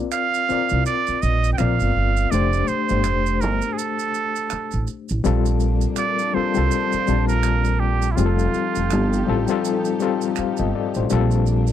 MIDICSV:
0, 0, Header, 1, 7, 480
1, 0, Start_track
1, 0, Key_signature, -2, "major"
1, 0, Tempo, 731707
1, 1519, Time_signature, 4, 2, 24, 8
1, 7690, End_track
2, 0, Start_track
2, 0, Title_t, "Muted trumpet"
2, 0, Program_c, 0, 59
2, 83, Note_on_c, 0, 77, 104
2, 535, Note_off_c, 0, 77, 0
2, 568, Note_on_c, 0, 74, 99
2, 800, Note_on_c, 0, 75, 89
2, 810, Note_off_c, 0, 74, 0
2, 1001, Note_off_c, 0, 75, 0
2, 1005, Note_on_c, 0, 79, 68
2, 1036, Note_on_c, 0, 77, 91
2, 1045, Note_off_c, 0, 79, 0
2, 1515, Note_on_c, 0, 74, 91
2, 1524, Note_off_c, 0, 77, 0
2, 1757, Note_on_c, 0, 72, 87
2, 1767, Note_off_c, 0, 74, 0
2, 2236, Note_on_c, 0, 70, 73
2, 2246, Note_off_c, 0, 72, 0
2, 2447, Note_on_c, 0, 68, 56
2, 2456, Note_off_c, 0, 70, 0
2, 2478, Note_on_c, 0, 69, 78
2, 2488, Note_off_c, 0, 68, 0
2, 3198, Note_off_c, 0, 69, 0
2, 3923, Note_on_c, 0, 74, 102
2, 4162, Note_on_c, 0, 72, 101
2, 4172, Note_off_c, 0, 74, 0
2, 4771, Note_off_c, 0, 72, 0
2, 4775, Note_on_c, 0, 70, 93
2, 5115, Note_on_c, 0, 67, 83
2, 5125, Note_off_c, 0, 70, 0
2, 5324, Note_on_c, 0, 64, 59
2, 5334, Note_off_c, 0, 67, 0
2, 5352, Note_on_c, 0, 65, 74
2, 5361, Note_off_c, 0, 64, 0
2, 6315, Note_off_c, 0, 65, 0
2, 7690, End_track
3, 0, Start_track
3, 0, Title_t, "Reed electric piano"
3, 0, Program_c, 1, 4
3, 0, Control_c, 1, 64, 127
3, 0, Note_on_c, 1, 60, 101
3, 0, Note_on_c, 1, 65, 88
3, 0, Note_on_c, 1, 70, 87
3, 0, Note_on_c, 1, 74, 109
3, 183, Note_off_c, 1, 60, 0
3, 185, Note_off_c, 1, 65, 0
3, 189, Note_off_c, 1, 70, 0
3, 191, Note_off_c, 1, 74, 0
3, 322, Note_on_c, 1, 60, 72
3, 328, Note_on_c, 1, 65, 63
3, 334, Note_on_c, 1, 70, 63
3, 339, Note_on_c, 1, 74, 76
3, 1032, Note_off_c, 1, 60, 0
3, 1038, Note_off_c, 1, 65, 0
3, 1040, Note_on_c, 1, 60, 74
3, 1043, Note_off_c, 1, 70, 0
3, 1046, Control_c, 1, 64, 0
3, 1046, Note_on_c, 1, 65, 66
3, 1049, Note_off_c, 1, 74, 0
3, 1051, Note_on_c, 1, 70, 64
3, 1057, Note_on_c, 1, 74, 79
3, 1151, Control_c, 1, 64, 127
3, 1439, Note_off_c, 1, 60, 0
3, 1442, Note_off_c, 1, 65, 0
3, 1445, Note_off_c, 1, 70, 0
3, 1448, Note_off_c, 1, 74, 0
3, 1519, Note_on_c, 1, 57, 83
3, 1525, Note_on_c, 1, 62, 78
3, 1527, Control_c, 1, 64, 0
3, 1530, Note_on_c, 1, 67, 76
3, 1536, Note_on_c, 1, 72, 94
3, 1647, Control_c, 1, 64, 127
3, 1810, Note_off_c, 1, 57, 0
3, 1813, Note_off_c, 1, 62, 0
3, 1816, Note_off_c, 1, 67, 0
3, 1819, Note_off_c, 1, 72, 0
3, 1897, Note_on_c, 1, 57, 64
3, 1904, Note_on_c, 1, 62, 58
3, 1909, Note_on_c, 1, 67, 60
3, 1913, Note_on_c, 1, 72, 76
3, 2649, Note_off_c, 1, 57, 0
3, 2653, Note_off_c, 1, 62, 0
3, 2655, Note_off_c, 1, 67, 0
3, 2657, Note_off_c, 1, 72, 0
3, 3437, Note_on_c, 1, 55, 107
3, 3441, Note_on_c, 1, 60, 90
3, 3446, Control_c, 1, 64, 0
3, 3448, Note_on_c, 1, 65, 94
3, 3451, Note_on_c, 1, 69, 109
3, 3561, Control_c, 1, 64, 127
3, 4021, Note_off_c, 1, 55, 0
3, 4023, Note_off_c, 1, 60, 0
3, 4027, Note_off_c, 1, 65, 0
3, 4028, Note_off_c, 1, 69, 0
3, 4158, Note_on_c, 1, 55, 69
3, 4163, Note_on_c, 1, 60, 65
3, 4169, Note_on_c, 1, 65, 60
3, 4175, Note_on_c, 1, 69, 75
3, 4269, Note_off_c, 1, 55, 0
3, 4271, Note_off_c, 1, 60, 0
3, 4274, Note_off_c, 1, 65, 0
3, 4277, Note_off_c, 1, 69, 0
3, 4295, Note_on_c, 1, 55, 68
3, 4300, Note_on_c, 1, 60, 63
3, 4305, Note_on_c, 1, 65, 59
3, 4313, Note_on_c, 1, 69, 77
3, 4573, Note_off_c, 1, 55, 0
3, 4576, Note_off_c, 1, 60, 0
3, 4579, Note_off_c, 1, 65, 0
3, 4582, Note_off_c, 1, 69, 0
3, 4642, Note_on_c, 1, 55, 68
3, 4647, Note_on_c, 1, 60, 61
3, 4651, Note_on_c, 1, 65, 61
3, 4660, Note_on_c, 1, 81, 72
3, 5223, Note_off_c, 1, 55, 0
3, 5226, Note_off_c, 1, 60, 0
3, 5228, Note_off_c, 1, 65, 0
3, 5232, Note_off_c, 1, 81, 0
3, 5357, Note_on_c, 1, 55, 82
3, 5363, Note_on_c, 1, 60, 75
3, 5367, Control_c, 1, 64, 0
3, 5370, Note_on_c, 1, 65, 80
3, 5374, Note_on_c, 1, 68, 74
3, 5416, Note_off_c, 1, 68, 0
3, 5417, Note_on_c, 1, 69, 99
3, 5468, Control_c, 1, 64, 127
3, 5941, Note_off_c, 1, 55, 0
3, 5944, Note_off_c, 1, 60, 0
3, 5947, Note_off_c, 1, 65, 0
3, 5971, Note_off_c, 1, 69, 0
3, 6078, Note_on_c, 1, 55, 79
3, 6085, Note_on_c, 1, 60, 80
3, 6090, Note_on_c, 1, 65, 79
3, 6098, Note_on_c, 1, 69, 96
3, 6189, Note_off_c, 1, 55, 0
3, 6192, Note_off_c, 1, 60, 0
3, 6195, Note_off_c, 1, 65, 0
3, 6199, Note_off_c, 1, 69, 0
3, 6220, Note_on_c, 1, 55, 77
3, 6226, Note_on_c, 1, 60, 74
3, 6231, Note_on_c, 1, 65, 78
3, 6238, Note_on_c, 1, 69, 89
3, 6496, Note_off_c, 1, 55, 0
3, 6499, Note_off_c, 1, 60, 0
3, 6502, Note_off_c, 1, 65, 0
3, 6505, Note_off_c, 1, 69, 0
3, 6563, Note_on_c, 1, 55, 83
3, 6570, Note_on_c, 1, 60, 76
3, 6574, Note_on_c, 1, 65, 76
3, 6580, Note_on_c, 1, 69, 86
3, 6809, Note_off_c, 1, 69, 0
3, 6811, Note_on_c, 1, 77, 65
3, 6815, Note_on_c, 1, 72, 52
3, 6938, Note_off_c, 1, 77, 0
3, 6940, Note_off_c, 1, 72, 0
3, 6949, Note_on_c, 1, 75, 65
3, 6951, Note_on_c, 1, 69, 51
3, 7039, Note_off_c, 1, 75, 0
3, 7040, Note_off_c, 1, 69, 0
3, 7053, Note_on_c, 1, 74, 71
3, 7054, Note_on_c, 1, 69, 54
3, 7144, Note_off_c, 1, 55, 0
3, 7147, Note_off_c, 1, 60, 0
3, 7149, Note_off_c, 1, 65, 0
3, 7179, Note_off_c, 1, 69, 0
3, 7179, Note_off_c, 1, 74, 0
3, 7193, Note_on_c, 1, 72, 64
3, 7196, Note_on_c, 1, 67, 49
3, 7283, Note_on_c, 1, 55, 108
3, 7287, Control_c, 1, 64, 0
3, 7287, Note_on_c, 1, 60, 91
3, 7296, Note_on_c, 1, 65, 93
3, 7300, Note_on_c, 1, 69, 112
3, 7392, Control_c, 1, 64, 127
3, 7414, Note_off_c, 1, 72, 0
3, 7416, Note_off_c, 1, 67, 0
3, 7690, Note_off_c, 1, 55, 0
3, 7690, Note_off_c, 1, 60, 0
3, 7690, Note_off_c, 1, 65, 0
3, 7690, Note_off_c, 1, 69, 0
3, 7690, End_track
4, 0, Start_track
4, 0, Title_t, "String section"
4, 0, Program_c, 2, 48
4, 3440, Note_on_c, 2, 53, 75
4, 3440, Note_on_c, 2, 58, 70
4, 3441, Note_on_c, 2, 62, 80
4, 5340, Note_off_c, 2, 53, 0
4, 5340, Note_off_c, 2, 58, 0
4, 5340, Note_off_c, 2, 62, 0
4, 5352, Note_on_c, 2, 53, 73
4, 5352, Note_on_c, 2, 67, 74
4, 5353, Note_on_c, 2, 69, 83
4, 5354, Note_on_c, 2, 63, 71
4, 7256, Note_off_c, 2, 53, 0
4, 7256, Note_off_c, 2, 67, 0
4, 7256, Note_off_c, 2, 69, 0
4, 7257, Note_off_c, 2, 63, 0
4, 7279, Note_on_c, 2, 62, 83
4, 7280, Note_on_c, 2, 58, 69
4, 7281, Note_on_c, 2, 57, 77
4, 7690, Note_off_c, 2, 57, 0
4, 7690, Note_off_c, 2, 58, 0
4, 7690, Note_off_c, 2, 62, 0
4, 7690, End_track
5, 0, Start_track
5, 0, Title_t, "Upright bass"
5, 0, Program_c, 3, 32
5, 469, Note_on_c, 3, 36, 87
5, 546, Note_off_c, 3, 36, 0
5, 807, Note_on_c, 3, 34, 85
5, 999, Note_off_c, 3, 34, 0
5, 1052, Note_on_c, 3, 34, 97
5, 1160, Note_off_c, 3, 34, 0
5, 1190, Note_on_c, 3, 31, 82
5, 1266, Note_off_c, 3, 31, 0
5, 1289, Note_on_c, 3, 31, 77
5, 1480, Note_off_c, 3, 31, 0
5, 1527, Note_on_c, 3, 29, 101
5, 1719, Note_off_c, 3, 29, 0
5, 1908, Note_on_c, 3, 31, 79
5, 2009, Note_off_c, 3, 31, 0
5, 2009, Note_on_c, 3, 29, 87
5, 2249, Note_off_c, 3, 29, 0
5, 2249, Note_on_c, 3, 31, 89
5, 2358, Note_off_c, 3, 31, 0
5, 3107, Note_on_c, 3, 33, 77
5, 3185, Note_off_c, 3, 33, 0
5, 3351, Note_on_c, 3, 33, 79
5, 3427, Note_off_c, 3, 33, 0
5, 3449, Note_on_c, 3, 34, 92
5, 3835, Note_off_c, 3, 34, 0
5, 4309, Note_on_c, 3, 36, 81
5, 4386, Note_off_c, 3, 36, 0
5, 4647, Note_on_c, 3, 34, 82
5, 5336, Note_off_c, 3, 34, 0
5, 5368, Note_on_c, 3, 29, 107
5, 5559, Note_off_c, 3, 29, 0
5, 5753, Note_on_c, 3, 29, 82
5, 5851, Note_off_c, 3, 29, 0
5, 5851, Note_on_c, 3, 31, 92
5, 6041, Note_off_c, 3, 31, 0
5, 6090, Note_on_c, 3, 33, 84
5, 6199, Note_off_c, 3, 33, 0
5, 6951, Note_on_c, 3, 31, 82
5, 7027, Note_off_c, 3, 31, 0
5, 7192, Note_on_c, 3, 33, 76
5, 7268, Note_off_c, 3, 33, 0
5, 7290, Note_on_c, 3, 34, 97
5, 7676, Note_off_c, 3, 34, 0
5, 7690, End_track
6, 0, Start_track
6, 0, Title_t, "Muted upright bass strokes"
6, 329, Note_on_c, 9, 29, 44
6, 395, Note_off_c, 9, 29, 0
6, 711, Note_on_c, 9, 29, 41
6, 777, Note_off_c, 9, 29, 0
6, 1769, Note_on_c, 9, 29, 43
6, 1834, Note_off_c, 9, 29, 0
6, 2967, Note_on_c, 9, 29, 42
6, 3033, Note_off_c, 9, 29, 0
6, 4171, Note_on_c, 9, 29, 45
6, 4236, Note_off_c, 9, 29, 0
6, 4549, Note_on_c, 9, 29, 43
6, 4615, Note_off_c, 9, 29, 0
6, 5609, Note_on_c, 9, 29, 48
6, 5675, Note_off_c, 9, 29, 0
6, 6812, Note_on_c, 9, 29, 46
6, 6878, Note_off_c, 9, 29, 0
6, 7690, End_track
7, 0, Start_track
7, 0, Title_t, "Drums"
7, 76, Note_on_c, 9, 26, 61
7, 76, Note_on_c, 9, 82, 55
7, 142, Note_off_c, 9, 26, 0
7, 142, Note_off_c, 9, 82, 0
7, 224, Note_on_c, 9, 82, 41
7, 289, Note_off_c, 9, 82, 0
7, 323, Note_on_c, 9, 82, 40
7, 389, Note_off_c, 9, 82, 0
7, 454, Note_on_c, 9, 82, 41
7, 519, Note_off_c, 9, 82, 0
7, 563, Note_on_c, 9, 82, 64
7, 629, Note_off_c, 9, 82, 0
7, 699, Note_on_c, 9, 82, 41
7, 765, Note_off_c, 9, 82, 0
7, 803, Note_on_c, 9, 82, 42
7, 869, Note_off_c, 9, 82, 0
7, 943, Note_on_c, 9, 82, 43
7, 1009, Note_off_c, 9, 82, 0
7, 1038, Note_on_c, 9, 26, 59
7, 1038, Note_on_c, 9, 82, 57
7, 1104, Note_off_c, 9, 26, 0
7, 1104, Note_off_c, 9, 82, 0
7, 1178, Note_on_c, 9, 82, 39
7, 1244, Note_off_c, 9, 82, 0
7, 1421, Note_on_c, 9, 82, 41
7, 1486, Note_off_c, 9, 82, 0
7, 1523, Note_on_c, 9, 82, 57
7, 1588, Note_off_c, 9, 82, 0
7, 1659, Note_on_c, 9, 82, 41
7, 1724, Note_off_c, 9, 82, 0
7, 1756, Note_on_c, 9, 82, 36
7, 1821, Note_off_c, 9, 82, 0
7, 1895, Note_on_c, 9, 82, 44
7, 1960, Note_off_c, 9, 82, 0
7, 1993, Note_on_c, 9, 26, 58
7, 1993, Note_on_c, 9, 82, 57
7, 2059, Note_off_c, 9, 26, 0
7, 2059, Note_off_c, 9, 82, 0
7, 2141, Note_on_c, 9, 82, 43
7, 2206, Note_off_c, 9, 82, 0
7, 2239, Note_on_c, 9, 82, 41
7, 2305, Note_off_c, 9, 82, 0
7, 2373, Note_on_c, 9, 82, 44
7, 2438, Note_off_c, 9, 82, 0
7, 2484, Note_on_c, 9, 82, 69
7, 2550, Note_off_c, 9, 82, 0
7, 2618, Note_on_c, 9, 82, 45
7, 2684, Note_off_c, 9, 82, 0
7, 2718, Note_on_c, 9, 82, 45
7, 2783, Note_off_c, 9, 82, 0
7, 2858, Note_on_c, 9, 82, 42
7, 2924, Note_off_c, 9, 82, 0
7, 2952, Note_on_c, 9, 26, 62
7, 2952, Note_on_c, 9, 82, 58
7, 3018, Note_off_c, 9, 26, 0
7, 3018, Note_off_c, 9, 82, 0
7, 3091, Note_on_c, 9, 82, 38
7, 3157, Note_off_c, 9, 82, 0
7, 3196, Note_on_c, 9, 82, 43
7, 3261, Note_off_c, 9, 82, 0
7, 3338, Note_on_c, 9, 82, 44
7, 3404, Note_off_c, 9, 82, 0
7, 3441, Note_on_c, 9, 82, 61
7, 3507, Note_off_c, 9, 82, 0
7, 3579, Note_on_c, 9, 82, 44
7, 3645, Note_off_c, 9, 82, 0
7, 3674, Note_on_c, 9, 82, 37
7, 3739, Note_off_c, 9, 82, 0
7, 3812, Note_on_c, 9, 82, 44
7, 3878, Note_off_c, 9, 82, 0
7, 3911, Note_on_c, 9, 26, 58
7, 3911, Note_on_c, 9, 82, 57
7, 3976, Note_off_c, 9, 26, 0
7, 3976, Note_off_c, 9, 82, 0
7, 4060, Note_on_c, 9, 82, 44
7, 4125, Note_off_c, 9, 82, 0
7, 4292, Note_on_c, 9, 82, 42
7, 4358, Note_off_c, 9, 82, 0
7, 4403, Note_on_c, 9, 82, 70
7, 4469, Note_off_c, 9, 82, 0
7, 4541, Note_on_c, 9, 82, 41
7, 4607, Note_off_c, 9, 82, 0
7, 4640, Note_on_c, 9, 82, 43
7, 4705, Note_off_c, 9, 82, 0
7, 4782, Note_on_c, 9, 82, 44
7, 4847, Note_off_c, 9, 82, 0
7, 4875, Note_on_c, 9, 26, 61
7, 4875, Note_on_c, 9, 82, 65
7, 4941, Note_off_c, 9, 26, 0
7, 4941, Note_off_c, 9, 82, 0
7, 5015, Note_on_c, 9, 82, 38
7, 5081, Note_off_c, 9, 82, 0
7, 5261, Note_on_c, 9, 82, 45
7, 5327, Note_off_c, 9, 82, 0
7, 5364, Note_on_c, 9, 82, 59
7, 5429, Note_off_c, 9, 82, 0
7, 5503, Note_on_c, 9, 82, 44
7, 5569, Note_off_c, 9, 82, 0
7, 5602, Note_on_c, 9, 82, 37
7, 5668, Note_off_c, 9, 82, 0
7, 5742, Note_on_c, 9, 82, 47
7, 5807, Note_off_c, 9, 82, 0
7, 5842, Note_on_c, 9, 26, 63
7, 5842, Note_on_c, 9, 82, 58
7, 5907, Note_off_c, 9, 26, 0
7, 5907, Note_off_c, 9, 82, 0
7, 5989, Note_on_c, 9, 82, 43
7, 6055, Note_off_c, 9, 82, 0
7, 6216, Note_on_c, 9, 82, 44
7, 6282, Note_off_c, 9, 82, 0
7, 6328, Note_on_c, 9, 82, 71
7, 6393, Note_off_c, 9, 82, 0
7, 6460, Note_on_c, 9, 82, 44
7, 6526, Note_off_c, 9, 82, 0
7, 6560, Note_on_c, 9, 82, 45
7, 6626, Note_off_c, 9, 82, 0
7, 6700, Note_on_c, 9, 82, 45
7, 6766, Note_off_c, 9, 82, 0
7, 6795, Note_on_c, 9, 26, 63
7, 6795, Note_on_c, 9, 82, 61
7, 6861, Note_off_c, 9, 26, 0
7, 6861, Note_off_c, 9, 82, 0
7, 6933, Note_on_c, 9, 82, 38
7, 6999, Note_off_c, 9, 82, 0
7, 7179, Note_on_c, 9, 82, 44
7, 7244, Note_off_c, 9, 82, 0
7, 7280, Note_on_c, 9, 82, 62
7, 7346, Note_off_c, 9, 82, 0
7, 7419, Note_on_c, 9, 82, 43
7, 7485, Note_off_c, 9, 82, 0
7, 7520, Note_on_c, 9, 82, 39
7, 7586, Note_off_c, 9, 82, 0
7, 7656, Note_on_c, 9, 82, 48
7, 7690, Note_off_c, 9, 82, 0
7, 7690, End_track
0, 0, End_of_file